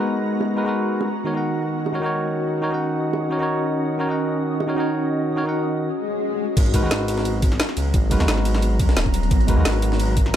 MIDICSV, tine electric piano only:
0, 0, Header, 1, 2, 480
1, 0, Start_track
1, 0, Tempo, 342857
1, 1518, Time_signature, 4, 2, 24, 8
1, 14507, End_track
2, 0, Start_track
2, 0, Title_t, "Tine electric piano"
2, 0, Program_c, 0, 4
2, 0, Note_on_c, 0, 56, 67
2, 0, Note_on_c, 0, 63, 60
2, 0, Note_on_c, 0, 66, 62
2, 0, Note_on_c, 0, 70, 60
2, 4, Note_on_c, 0, 71, 74
2, 754, Note_off_c, 0, 56, 0
2, 763, Note_off_c, 0, 63, 0
2, 772, Note_off_c, 0, 66, 0
2, 780, Note_on_c, 0, 56, 77
2, 781, Note_off_c, 0, 70, 0
2, 788, Note_on_c, 0, 63, 72
2, 790, Note_off_c, 0, 71, 0
2, 798, Note_on_c, 0, 66, 69
2, 807, Note_on_c, 0, 70, 71
2, 816, Note_on_c, 0, 71, 87
2, 874, Note_off_c, 0, 56, 0
2, 890, Note_off_c, 0, 63, 0
2, 891, Note_on_c, 0, 56, 85
2, 896, Note_off_c, 0, 66, 0
2, 900, Note_off_c, 0, 70, 0
2, 904, Note_off_c, 0, 71, 0
2, 909, Note_on_c, 0, 63, 77
2, 926, Note_on_c, 0, 66, 78
2, 946, Note_on_c, 0, 70, 77
2, 963, Note_on_c, 0, 71, 93
2, 1486, Note_off_c, 0, 56, 0
2, 1495, Note_off_c, 0, 63, 0
2, 1504, Note_off_c, 0, 66, 0
2, 1514, Note_off_c, 0, 70, 0
2, 1522, Note_off_c, 0, 71, 0
2, 1741, Note_on_c, 0, 51, 83
2, 1750, Note_on_c, 0, 63, 73
2, 1758, Note_on_c, 0, 66, 76
2, 1767, Note_on_c, 0, 70, 76
2, 1777, Note_on_c, 0, 73, 88
2, 1834, Note_off_c, 0, 51, 0
2, 1851, Note_on_c, 0, 51, 68
2, 1852, Note_off_c, 0, 63, 0
2, 1855, Note_off_c, 0, 66, 0
2, 1860, Note_off_c, 0, 70, 0
2, 1865, Note_off_c, 0, 73, 0
2, 1869, Note_on_c, 0, 63, 61
2, 1888, Note_on_c, 0, 66, 63
2, 1905, Note_on_c, 0, 70, 60
2, 1923, Note_on_c, 0, 78, 75
2, 2673, Note_off_c, 0, 51, 0
2, 2682, Note_off_c, 0, 63, 0
2, 2691, Note_off_c, 0, 66, 0
2, 2698, Note_on_c, 0, 51, 77
2, 2700, Note_off_c, 0, 70, 0
2, 2708, Note_on_c, 0, 63, 72
2, 2709, Note_off_c, 0, 78, 0
2, 2717, Note_on_c, 0, 66, 70
2, 2726, Note_on_c, 0, 70, 71
2, 2733, Note_on_c, 0, 73, 86
2, 2792, Note_off_c, 0, 51, 0
2, 2809, Note_on_c, 0, 51, 88
2, 2810, Note_off_c, 0, 63, 0
2, 2815, Note_off_c, 0, 66, 0
2, 2819, Note_off_c, 0, 70, 0
2, 2823, Note_off_c, 0, 73, 0
2, 2826, Note_on_c, 0, 63, 80
2, 2845, Note_on_c, 0, 66, 79
2, 2863, Note_on_c, 0, 70, 78
2, 2882, Note_on_c, 0, 73, 94
2, 3632, Note_off_c, 0, 51, 0
2, 3641, Note_off_c, 0, 63, 0
2, 3650, Note_off_c, 0, 66, 0
2, 3656, Note_on_c, 0, 51, 83
2, 3659, Note_off_c, 0, 70, 0
2, 3665, Note_on_c, 0, 63, 75
2, 3669, Note_off_c, 0, 73, 0
2, 3675, Note_on_c, 0, 66, 76
2, 3684, Note_on_c, 0, 70, 76
2, 3694, Note_on_c, 0, 73, 87
2, 3748, Note_off_c, 0, 51, 0
2, 3765, Note_on_c, 0, 51, 68
2, 3769, Note_off_c, 0, 63, 0
2, 3774, Note_off_c, 0, 66, 0
2, 3778, Note_off_c, 0, 70, 0
2, 3783, Note_off_c, 0, 73, 0
2, 3783, Note_on_c, 0, 63, 61
2, 3802, Note_on_c, 0, 66, 62
2, 3819, Note_on_c, 0, 70, 62
2, 3838, Note_on_c, 0, 78, 74
2, 4590, Note_off_c, 0, 51, 0
2, 4599, Note_off_c, 0, 63, 0
2, 4609, Note_off_c, 0, 66, 0
2, 4617, Note_off_c, 0, 70, 0
2, 4619, Note_on_c, 0, 51, 78
2, 4626, Note_off_c, 0, 78, 0
2, 4628, Note_on_c, 0, 63, 74
2, 4637, Note_on_c, 0, 66, 71
2, 4646, Note_on_c, 0, 70, 71
2, 4654, Note_on_c, 0, 73, 88
2, 4710, Note_off_c, 0, 51, 0
2, 4727, Note_on_c, 0, 51, 86
2, 4730, Note_off_c, 0, 63, 0
2, 4735, Note_off_c, 0, 66, 0
2, 4740, Note_off_c, 0, 70, 0
2, 4743, Note_off_c, 0, 73, 0
2, 4744, Note_on_c, 0, 63, 79
2, 4765, Note_on_c, 0, 66, 79
2, 4782, Note_on_c, 0, 70, 81
2, 4799, Note_on_c, 0, 73, 97
2, 5551, Note_off_c, 0, 51, 0
2, 5560, Note_off_c, 0, 63, 0
2, 5570, Note_off_c, 0, 66, 0
2, 5576, Note_on_c, 0, 51, 80
2, 5579, Note_off_c, 0, 70, 0
2, 5586, Note_on_c, 0, 63, 76
2, 5587, Note_off_c, 0, 73, 0
2, 5596, Note_on_c, 0, 66, 75
2, 5604, Note_on_c, 0, 70, 77
2, 5614, Note_on_c, 0, 73, 91
2, 5669, Note_off_c, 0, 51, 0
2, 5686, Note_on_c, 0, 51, 70
2, 5689, Note_off_c, 0, 63, 0
2, 5694, Note_off_c, 0, 66, 0
2, 5699, Note_off_c, 0, 70, 0
2, 5703, Note_off_c, 0, 73, 0
2, 5704, Note_on_c, 0, 63, 62
2, 5722, Note_on_c, 0, 66, 62
2, 5740, Note_on_c, 0, 70, 63
2, 5757, Note_on_c, 0, 78, 74
2, 6511, Note_off_c, 0, 51, 0
2, 6520, Note_off_c, 0, 63, 0
2, 6529, Note_off_c, 0, 66, 0
2, 6537, Note_on_c, 0, 51, 81
2, 6538, Note_off_c, 0, 70, 0
2, 6546, Note_off_c, 0, 78, 0
2, 6546, Note_on_c, 0, 63, 73
2, 6554, Note_on_c, 0, 66, 72
2, 6563, Note_on_c, 0, 70, 75
2, 6573, Note_on_c, 0, 73, 90
2, 6634, Note_off_c, 0, 51, 0
2, 6650, Note_off_c, 0, 63, 0
2, 6650, Note_on_c, 0, 51, 88
2, 6654, Note_off_c, 0, 66, 0
2, 6658, Note_off_c, 0, 70, 0
2, 6663, Note_off_c, 0, 73, 0
2, 6667, Note_on_c, 0, 63, 80
2, 6686, Note_on_c, 0, 66, 82
2, 6704, Note_on_c, 0, 70, 79
2, 6723, Note_on_c, 0, 73, 94
2, 7473, Note_off_c, 0, 51, 0
2, 7481, Note_off_c, 0, 63, 0
2, 7490, Note_off_c, 0, 66, 0
2, 7498, Note_on_c, 0, 51, 81
2, 7500, Note_off_c, 0, 70, 0
2, 7507, Note_on_c, 0, 63, 77
2, 7509, Note_off_c, 0, 73, 0
2, 7516, Note_on_c, 0, 66, 75
2, 7525, Note_on_c, 0, 70, 77
2, 7534, Note_on_c, 0, 73, 93
2, 7593, Note_off_c, 0, 51, 0
2, 7610, Note_off_c, 0, 63, 0
2, 7610, Note_on_c, 0, 51, 71
2, 7615, Note_off_c, 0, 66, 0
2, 7619, Note_off_c, 0, 70, 0
2, 7623, Note_off_c, 0, 73, 0
2, 7628, Note_on_c, 0, 63, 64
2, 7646, Note_on_c, 0, 66, 62
2, 7664, Note_on_c, 0, 70, 64
2, 7683, Note_on_c, 0, 78, 77
2, 8219, Note_off_c, 0, 51, 0
2, 8229, Note_off_c, 0, 63, 0
2, 8237, Note_off_c, 0, 66, 0
2, 8246, Note_off_c, 0, 70, 0
2, 8256, Note_off_c, 0, 78, 0
2, 9418, Note_on_c, 0, 56, 89
2, 9427, Note_on_c, 0, 63, 83
2, 9437, Note_on_c, 0, 66, 84
2, 9445, Note_on_c, 0, 70, 85
2, 9455, Note_on_c, 0, 71, 101
2, 9513, Note_off_c, 0, 56, 0
2, 9530, Note_off_c, 0, 63, 0
2, 9530, Note_on_c, 0, 56, 73
2, 9535, Note_off_c, 0, 66, 0
2, 9539, Note_off_c, 0, 70, 0
2, 9544, Note_off_c, 0, 71, 0
2, 9547, Note_on_c, 0, 63, 70
2, 9566, Note_on_c, 0, 66, 71
2, 9584, Note_on_c, 0, 70, 69
2, 9601, Note_on_c, 0, 71, 84
2, 10352, Note_off_c, 0, 56, 0
2, 10361, Note_off_c, 0, 63, 0
2, 10370, Note_off_c, 0, 66, 0
2, 10379, Note_off_c, 0, 70, 0
2, 10388, Note_off_c, 0, 71, 0
2, 11338, Note_on_c, 0, 56, 92
2, 11347, Note_on_c, 0, 63, 82
2, 11357, Note_on_c, 0, 66, 84
2, 11364, Note_on_c, 0, 70, 85
2, 11374, Note_on_c, 0, 71, 101
2, 11431, Note_off_c, 0, 56, 0
2, 11448, Note_on_c, 0, 56, 76
2, 11450, Note_off_c, 0, 63, 0
2, 11455, Note_off_c, 0, 66, 0
2, 11459, Note_off_c, 0, 70, 0
2, 11463, Note_off_c, 0, 71, 0
2, 11464, Note_on_c, 0, 63, 69
2, 11483, Note_on_c, 0, 66, 69
2, 11502, Note_on_c, 0, 70, 69
2, 11520, Note_on_c, 0, 71, 84
2, 12271, Note_off_c, 0, 56, 0
2, 12280, Note_off_c, 0, 63, 0
2, 12289, Note_off_c, 0, 66, 0
2, 12298, Note_off_c, 0, 70, 0
2, 12308, Note_off_c, 0, 71, 0
2, 13259, Note_on_c, 0, 56, 93
2, 13267, Note_on_c, 0, 63, 83
2, 13277, Note_on_c, 0, 66, 84
2, 13286, Note_on_c, 0, 70, 84
2, 13294, Note_on_c, 0, 71, 103
2, 13353, Note_off_c, 0, 56, 0
2, 13370, Note_off_c, 0, 63, 0
2, 13370, Note_on_c, 0, 56, 76
2, 13375, Note_off_c, 0, 66, 0
2, 13379, Note_off_c, 0, 70, 0
2, 13383, Note_off_c, 0, 71, 0
2, 13388, Note_on_c, 0, 63, 70
2, 13407, Note_on_c, 0, 66, 71
2, 13424, Note_on_c, 0, 70, 70
2, 13443, Note_on_c, 0, 71, 84
2, 14193, Note_off_c, 0, 56, 0
2, 14201, Note_off_c, 0, 63, 0
2, 14211, Note_off_c, 0, 66, 0
2, 14219, Note_off_c, 0, 70, 0
2, 14229, Note_off_c, 0, 71, 0
2, 14507, End_track
0, 0, End_of_file